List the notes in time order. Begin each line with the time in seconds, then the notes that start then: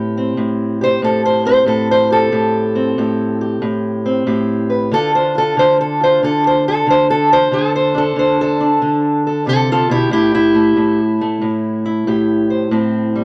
Already playing: A2 C4 G4
0.17 C4
0.37 A2
0.81 G4 C5
1.02 A2 A4
1.25 C5
1.45 C4 C5
1.66 A2 A4
1.91 C5
2.10 G4 A4
2.32 A2 G4
2.75 C4
2.98 A2 G4
3.41 G4
3.62 A2
4.06 C4
4.27 A2 G4
4.70 B4
4.91 D3 D4 F4 A4
5.15 C5
5.35 F4 A4
5.57 D3 C5
5.81 A4
6.00 F4 C5
6.23 D3 A4
6.47 C5
6.68 A4
6.87 D3 C5
7.10 A4
7.33 C5
7.51 D3 A4
7.76 C5
7.94 D4 A4
8.16 D3 C5
8.41 A4
8.60 D4
8.82 D3
9.27 A4
9.47 C3 F4 A4
9.72 F4 A4
9.89 B2 E4 G4
10.11 A2 E4 G4
10.35 E4
10.54 A3
10.76 A2 A3
11.21 A3
11.41 A2
11.86 E4
12.07 A2 G4
12.50 C5
12.71 A2 C4
13.16 G3